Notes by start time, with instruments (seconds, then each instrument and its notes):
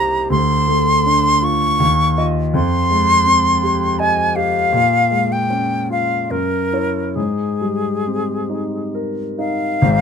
Already playing: grand piano C2 A#3 D#4 G4 C5, flute A#5
0.30 grand piano D2, flute C6
0.68 grand piano A3
1.06 grand piano D4
1.42 grand piano F4, flute C#6
1.80 grand piano D#2
2.18 grand piano F4 D#5
2.54 grand piano F2, flute C6
2.90 grand piano G#3
3.26 grand piano C4
3.63 grand piano G4
3.99 grand piano D#5, flute G#5
4.36 grand piano G4, flute F5
4.73 grand piano A#2
5.11 grand piano G#3
5.32 flute G5
5.50 grand piano C#4
5.90 grand piano F4, flute F5
6.31 grand piano F#2, flute A#4
6.73 grand piano E4 C#5
7.15 grand piano G#2, flute G#4
7.61 grand piano G3
8.07 grand piano C4
8.49 grand piano D#4
8.95 grand piano A#4
9.39 grand piano D#4, flute F5
9.82 grand piano G#1 G#2